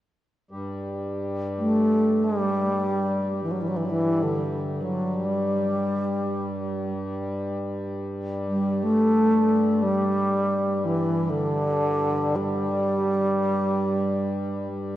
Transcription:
0.51 14.96 G2 medium
0.51 14.96 G3 medium
1.58 2.26 A3 medium
2.24 3.43 G3 medium
3.43 3.53 E3 medium
3.51 3.63 F#3 medium
3.61 3.69 E3 medium
3.68 3.78 F#3 medium
3.76 3.87 E3 medium
3.85 3.92 F#3 medium
3.90 4.24 E3 medium
4.23 4.83 D3 medium
4.82 5.26 F#3 medium
5.25 6.92 G3 medium
8.48 8.85 G3 medium
8.83 9.84 A3 medium
9.83 10.86 G3 medium
10.85 11.31 E3 medium
11.29 12.37 D3 medium
12.36 14.67 G3 medium

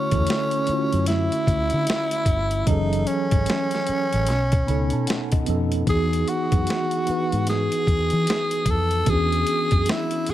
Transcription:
0.00 0.10 D3 medium
0.00 0.12 A3 medium
0.00 0.13 C#4 medium
0.00 1.07 C#4 medium
0.00 0.14 E4 medium
0.00 0.77 F#4 loud
0.10 0.26 E2 medium
0.10 0.62 D3 medium
0.10 0.63 A3 medium
0.10 0.63 C#4 medium
0.10 0.64 E4 medium
0.10 kick medium
0.10 closed hi-hat soft
0.15 0.64 A4 medium
0.27 snare medium
0.27 closed hi-hat medium
0.51 closed hi-hat soft
0.66 2.15 D3 medium
0.66 2.15 A3 medium
0.66 2.16 C#4 medium
0.66 2.17 E4 medium
0.66 muted fingered electric bass stroke soft
0.66 closed hi-hat medium
0.71 0.77 F4 medium
0.77 2.21 F#4 medium
0.93 1.28 F#2 medium
0.93 closed hi-hat soft
1.06 2.68 E4 medium
1.06 snare soft
1.06 closed hi-hat medium
1.32 closed hi-hat soft
1.47 1.69 D2 medium
1.47 kick medium
1.47 closed hi-hat soft
1.70 1.86 D3 medium
1.70 closed hi-hat soft
1.87 snare loud
1.87 closed hi-hat medium
2.11 closed hi-hat medium
2.26 2.62 G1 medium
2.26 kick medium
2.26 closed hi-hat medium
2.51 closed hi-hat soft
2.66 3.03 F#1 loud
2.66 4.16 E3 medium
2.66 4.15 F#3 medium
2.66 4.15 C#4 medium
2.66 3.08 D#4 medium
2.66 4.17 G#4 medium
2.66 kick loud
2.66 closed hi-hat medium
2.71 4.17 A4 medium
2.93 closed hi-hat soft
3.07 5.47 C#4 medium
3.07 closed hi-hat medium
3.31 3.46 G#1 medium
3.31 kick medium
3.31 closed hi-hat soft
3.46 snare medium
3.46 closed hi-hat medium
3.71 snare soft
3.71 closed hi-hat soft
3.87 muted fingered electric bass stroke soft
3.87 closed hi-hat medium
4.13 4.28 A1 medium
4.13 closed hi-hat soft
4.27 4.63 B1 medium
4.27 snare soft
4.27 closed hi-hat medium
4.52 kick medium
4.52 closed hi-hat soft
4.65 4.90 C#2 medium
4.65 5.40 B2 medium
4.65 5.41 B3 medium
4.65 5.41 C#4 medium
4.65 5.42 D#4 medium
4.65 4.90 B5 medium
4.65 closed hi-hat soft
4.70 5.43 A4 medium
4.90 5.06 B2 medium
4.90 5.06 A5 medium
4.90 closed hi-hat soft
5.07 5.30 F#5 medium
5.07 snare medium
5.07 closed hi-hat medium
5.32 5.46 D#5 medium
5.32 kick medium
5.32 closed hi-hat medium
5.45 5.83 F2 medium
5.45 5.83 B2 medium
5.45 5.83 B3 medium
5.45 5.84 C#4 medium
5.45 5.85 D#4 medium
5.45 5.84 D#5 medium
5.45 closed hi-hat medium
5.50 5.86 A4 medium
5.72 closed hi-hat soft
5.85 6.23 E2 loud
5.85 6.44 E3 medium
5.85 6.44 B3 medium
5.85 6.45 D#4 medium
5.85 6.46 F#4 medium
5.85 kick medium
5.85 closed hi-hat medium
5.89 6.30 G#4 medium
5.89 6.46 G#4 medium
6.13 closed hi-hat soft
6.28 7.48 F#4 medium
6.28 closed hi-hat medium
6.50 6.66 F#2 medium
6.50 7.02 E3 medium
6.50 7.02 B3 medium
6.50 7.03 D#4 medium
6.50 7.03 F#4 medium
6.50 kick medium
6.50 closed hi-hat soft
6.55 7.04 G#4 medium
6.67 snare medium
6.67 closed hi-hat medium
6.91 closed hi-hat soft
7.05 8.55 E3 medium
7.05 8.55 B3 medium
7.05 8.56 D#4 medium
7.05 8.56 F#4 medium
7.05 muted fingered electric bass stroke soft
7.05 closed hi-hat medium
7.10 8.57 B4 medium
7.32 7.68 G#2 medium
7.32 closed hi-hat soft
7.47 8.71 G#4 medium
7.47 snare soft
7.47 closed hi-hat medium
7.72 closed hi-hat soft
7.87 8.09 E2 medium
7.87 kick medium
7.87 closed hi-hat soft
8.10 8.26 E3 medium
8.10 closed hi-hat soft
8.27 snare medium
8.27 closed hi-hat medium
8.51 closed hi-hat medium
8.66 9.02 F2 medium
8.66 kick medium
8.66 closed hi-hat medium
8.70 9.11 A4 medium
8.91 closed hi-hat soft
9.05 9.43 E2 medium
9.05 10.34 E3 medium
9.05 10.34 B3 medium
9.05 10.34 C#4 medium
9.05 10.34 D4 medium
9.05 10.34 F#4 medium
9.05 kick loud
9.05 closed hi-hat medium
9.10 9.92 G#4 loud
9.10 10.34 G#4 medium
9.32 closed hi-hat soft
9.47 closed hi-hat medium
9.71 9.86 F#2 medium
9.71 kick medium
9.71 closed hi-hat soft
9.86 snare medium
9.86 closed hi-hat medium
9.90 10.32 E4 medium
10.11 closed hi-hat soft
10.27 10.34 G#4 medium
10.27 muted fingered electric bass stroke soft
10.27 closed hi-hat medium

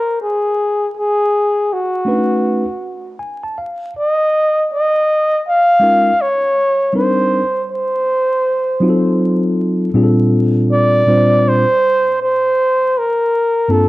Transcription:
0.00 0.18 A#4 medium
0.21 0.92 G#4 medium
0.98 1.75 G#4 medium
1.73 3.21 F#4 medium
2.05 2.63 A3 medium
2.05 2.63 C#4 medium
2.05 2.15 D4 medium
2.05 2.64 F#4 medium
2.05 2.64 B4 medium
2.13 2.67 D#4 medium
3.19 3.42 G#5 medium
3.43 3.56 A5 medium
3.58 3.93 F5 medium
3.98 4.68 D#5 loud
4.74 5.43 D#5 loud
5.48 6.23 F5 loud
5.79 6.10 G#3 medium
5.79 6.11 C#4 medium
5.79 6.11 D#4 medium
5.79 6.11 F4 medium
5.79 6.12 A#4 medium
6.21 6.96 C#5 medium
6.93 7.41 G3 medium
6.93 7.41 C4 medium
6.93 7.42 D4 medium
6.93 7.42 D#4 medium
6.93 7.42 A#4 medium
6.93 7.67 C5 medium
7.72 9.54 C5 medium
8.80 9.88 F#3 medium
8.80 9.89 C4 medium
8.80 9.89 D#4 medium
8.80 9.89 F4 medium
8.80 8.91 F#4 medium
8.90 9.93 A4 medium
9.94 11.01 A#2 medium
9.94 11.01 G3 medium
9.94 11.02 C4 medium
9.94 11.02 D4 medium
9.94 11.02 F4 medium
9.94 10.04 G#4 medium
10.03 11.06 A4 medium
10.73 11.50 D5 loud
11.06 11.63 A#2 medium
11.06 11.64 G3 medium
11.06 11.64 C4 medium
11.06 11.64 D4 medium
11.06 11.65 F4 medium
11.06 11.65 C5 medium
11.49 12.22 C5 loud
12.22 13.00 C5 medium
12.98 13.73 A#4 loud
13.68 13.89 G2 medium
13.68 13.89 A#3 medium
13.68 13.89 C4 medium
13.68 13.89 D4 medium
13.68 13.89 F4 medium
13.68 13.89 A4 medium

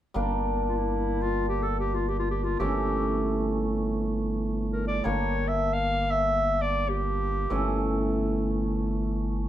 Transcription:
0.14 2.57 G1 medium
0.14 2.66 G3 medium
0.14 2.67 A#3 soft
0.14 2.67 D4 medium
0.68 0.78 F4 soft
0.77 1.23 E4 medium
1.21 1.48 F4 medium
1.48 1.64 G4 medium
1.62 1.79 A4 medium
1.79 1.96 G4 medium
1.94 2.09 F4 medium
2.08 2.18 G4 medium
2.19 2.29 F4 medium
2.31 2.45 G4 medium
2.44 2.58 F4 medium
2.59 5.02 G1 medium
2.59 5.11 E3 soft
2.59 5.11 A3 soft
2.59 5.11 C#4 medium
2.59 3.67 G4 medium
4.73 4.86 A#4 medium
4.87 5.06 D5 medium
5.04 7.47 G1 medium
5.04 7.56 G3 medium
5.04 7.57 A#3 soft
5.04 7.57 D4 medium
5.04 5.49 C#5 medium
5.48 5.75 E5 medium
5.73 6.12 F5 medium
6.10 6.63 E5 medium
6.61 6.90 D5 medium
6.89 7.93 G4 medium
7.50 9.49 G1 medium
7.50 9.49 E3 medium
7.50 9.49 A3 soft
7.50 9.49 C#4 medium

